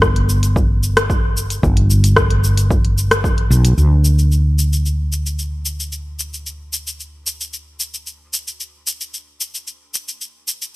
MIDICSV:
0, 0, Header, 1, 3, 480
1, 0, Start_track
1, 0, Tempo, 535714
1, 1465, Time_signature, 4, 2, 24, 8
1, 9640, End_track
2, 0, Start_track
2, 0, Title_t, "Fretless electric bass"
2, 0, Program_c, 0, 35
2, 0, Note_on_c, 0, 31, 96
2, 1434, Note_off_c, 0, 31, 0
2, 1461, Note_on_c, 0, 31, 98
2, 3114, Note_off_c, 0, 31, 0
2, 3141, Note_on_c, 0, 35, 93
2, 3346, Note_off_c, 0, 35, 0
2, 3383, Note_on_c, 0, 38, 71
2, 9640, Note_off_c, 0, 38, 0
2, 9640, End_track
3, 0, Start_track
3, 0, Title_t, "Drums"
3, 17, Note_on_c, 9, 37, 71
3, 23, Note_on_c, 9, 36, 94
3, 24, Note_on_c, 9, 82, 30
3, 107, Note_off_c, 9, 37, 0
3, 112, Note_off_c, 9, 36, 0
3, 113, Note_off_c, 9, 82, 0
3, 145, Note_on_c, 9, 42, 43
3, 234, Note_off_c, 9, 42, 0
3, 264, Note_on_c, 9, 82, 78
3, 353, Note_off_c, 9, 82, 0
3, 385, Note_on_c, 9, 42, 60
3, 391, Note_on_c, 9, 82, 43
3, 474, Note_off_c, 9, 42, 0
3, 481, Note_off_c, 9, 82, 0
3, 503, Note_on_c, 9, 36, 96
3, 508, Note_on_c, 9, 82, 28
3, 592, Note_off_c, 9, 36, 0
3, 598, Note_off_c, 9, 82, 0
3, 747, Note_on_c, 9, 82, 72
3, 837, Note_off_c, 9, 82, 0
3, 868, Note_on_c, 9, 37, 76
3, 868, Note_on_c, 9, 42, 56
3, 875, Note_on_c, 9, 82, 41
3, 958, Note_off_c, 9, 37, 0
3, 958, Note_off_c, 9, 42, 0
3, 964, Note_off_c, 9, 82, 0
3, 984, Note_on_c, 9, 36, 94
3, 987, Note_on_c, 9, 82, 30
3, 1073, Note_off_c, 9, 36, 0
3, 1077, Note_off_c, 9, 82, 0
3, 1228, Note_on_c, 9, 82, 74
3, 1318, Note_off_c, 9, 82, 0
3, 1347, Note_on_c, 9, 42, 53
3, 1353, Note_on_c, 9, 82, 41
3, 1436, Note_off_c, 9, 42, 0
3, 1443, Note_off_c, 9, 82, 0
3, 1464, Note_on_c, 9, 36, 97
3, 1467, Note_on_c, 9, 82, 32
3, 1553, Note_off_c, 9, 36, 0
3, 1556, Note_off_c, 9, 82, 0
3, 1585, Note_on_c, 9, 42, 46
3, 1674, Note_off_c, 9, 42, 0
3, 1706, Note_on_c, 9, 82, 77
3, 1796, Note_off_c, 9, 82, 0
3, 1827, Note_on_c, 9, 42, 53
3, 1834, Note_on_c, 9, 82, 39
3, 1917, Note_off_c, 9, 42, 0
3, 1923, Note_off_c, 9, 82, 0
3, 1940, Note_on_c, 9, 37, 76
3, 1944, Note_on_c, 9, 36, 97
3, 1946, Note_on_c, 9, 82, 30
3, 2029, Note_off_c, 9, 37, 0
3, 2034, Note_off_c, 9, 36, 0
3, 2036, Note_off_c, 9, 82, 0
3, 2065, Note_on_c, 9, 42, 44
3, 2155, Note_off_c, 9, 42, 0
3, 2187, Note_on_c, 9, 82, 79
3, 2276, Note_off_c, 9, 82, 0
3, 2307, Note_on_c, 9, 42, 54
3, 2313, Note_on_c, 9, 82, 41
3, 2396, Note_off_c, 9, 42, 0
3, 2403, Note_off_c, 9, 82, 0
3, 2424, Note_on_c, 9, 36, 105
3, 2429, Note_on_c, 9, 82, 31
3, 2514, Note_off_c, 9, 36, 0
3, 2518, Note_off_c, 9, 82, 0
3, 2550, Note_on_c, 9, 42, 34
3, 2640, Note_off_c, 9, 42, 0
3, 2670, Note_on_c, 9, 82, 69
3, 2760, Note_off_c, 9, 82, 0
3, 2789, Note_on_c, 9, 37, 78
3, 2789, Note_on_c, 9, 42, 58
3, 2796, Note_on_c, 9, 82, 44
3, 2879, Note_off_c, 9, 37, 0
3, 2879, Note_off_c, 9, 42, 0
3, 2885, Note_off_c, 9, 82, 0
3, 2904, Note_on_c, 9, 36, 92
3, 2910, Note_on_c, 9, 82, 33
3, 2994, Note_off_c, 9, 36, 0
3, 3000, Note_off_c, 9, 82, 0
3, 3027, Note_on_c, 9, 42, 32
3, 3117, Note_off_c, 9, 42, 0
3, 3150, Note_on_c, 9, 82, 70
3, 3240, Note_off_c, 9, 82, 0
3, 3267, Note_on_c, 9, 42, 55
3, 3274, Note_on_c, 9, 82, 40
3, 3357, Note_off_c, 9, 42, 0
3, 3363, Note_off_c, 9, 82, 0
3, 3386, Note_on_c, 9, 82, 28
3, 3476, Note_off_c, 9, 82, 0
3, 3626, Note_on_c, 9, 82, 67
3, 3716, Note_off_c, 9, 82, 0
3, 3752, Note_on_c, 9, 82, 36
3, 3842, Note_off_c, 9, 82, 0
3, 3869, Note_on_c, 9, 82, 27
3, 3959, Note_off_c, 9, 82, 0
3, 4110, Note_on_c, 9, 82, 70
3, 4200, Note_off_c, 9, 82, 0
3, 4237, Note_on_c, 9, 82, 39
3, 4327, Note_off_c, 9, 82, 0
3, 4353, Note_on_c, 9, 82, 28
3, 4443, Note_off_c, 9, 82, 0
3, 4592, Note_on_c, 9, 82, 61
3, 4682, Note_off_c, 9, 82, 0
3, 4716, Note_on_c, 9, 82, 40
3, 4806, Note_off_c, 9, 82, 0
3, 4828, Note_on_c, 9, 82, 29
3, 4918, Note_off_c, 9, 82, 0
3, 5068, Note_on_c, 9, 82, 73
3, 5157, Note_off_c, 9, 82, 0
3, 5196, Note_on_c, 9, 82, 40
3, 5286, Note_off_c, 9, 82, 0
3, 5308, Note_on_c, 9, 82, 30
3, 5397, Note_off_c, 9, 82, 0
3, 5550, Note_on_c, 9, 82, 74
3, 5640, Note_off_c, 9, 82, 0
3, 5679, Note_on_c, 9, 82, 38
3, 5768, Note_off_c, 9, 82, 0
3, 5793, Note_on_c, 9, 82, 29
3, 5882, Note_off_c, 9, 82, 0
3, 6030, Note_on_c, 9, 82, 73
3, 6120, Note_off_c, 9, 82, 0
3, 6158, Note_on_c, 9, 82, 42
3, 6248, Note_off_c, 9, 82, 0
3, 6272, Note_on_c, 9, 82, 29
3, 6362, Note_off_c, 9, 82, 0
3, 6512, Note_on_c, 9, 82, 70
3, 6601, Note_off_c, 9, 82, 0
3, 6637, Note_on_c, 9, 82, 38
3, 6727, Note_off_c, 9, 82, 0
3, 6752, Note_on_c, 9, 82, 31
3, 6841, Note_off_c, 9, 82, 0
3, 6988, Note_on_c, 9, 82, 69
3, 7078, Note_off_c, 9, 82, 0
3, 7115, Note_on_c, 9, 82, 42
3, 7204, Note_off_c, 9, 82, 0
3, 7227, Note_on_c, 9, 82, 33
3, 7317, Note_off_c, 9, 82, 0
3, 7468, Note_on_c, 9, 82, 76
3, 7558, Note_off_c, 9, 82, 0
3, 7595, Note_on_c, 9, 82, 38
3, 7684, Note_off_c, 9, 82, 0
3, 7709, Note_on_c, 9, 82, 32
3, 7799, Note_off_c, 9, 82, 0
3, 7948, Note_on_c, 9, 82, 79
3, 8037, Note_off_c, 9, 82, 0
3, 8072, Note_on_c, 9, 82, 39
3, 8162, Note_off_c, 9, 82, 0
3, 8189, Note_on_c, 9, 82, 32
3, 8279, Note_off_c, 9, 82, 0
3, 8429, Note_on_c, 9, 82, 70
3, 8518, Note_off_c, 9, 82, 0
3, 8554, Note_on_c, 9, 82, 39
3, 8644, Note_off_c, 9, 82, 0
3, 8668, Note_on_c, 9, 82, 32
3, 8757, Note_off_c, 9, 82, 0
3, 8908, Note_on_c, 9, 82, 75
3, 8998, Note_off_c, 9, 82, 0
3, 9035, Note_on_c, 9, 82, 40
3, 9125, Note_off_c, 9, 82, 0
3, 9150, Note_on_c, 9, 82, 32
3, 9240, Note_off_c, 9, 82, 0
3, 9389, Note_on_c, 9, 82, 78
3, 9478, Note_off_c, 9, 82, 0
3, 9516, Note_on_c, 9, 82, 42
3, 9605, Note_off_c, 9, 82, 0
3, 9640, End_track
0, 0, End_of_file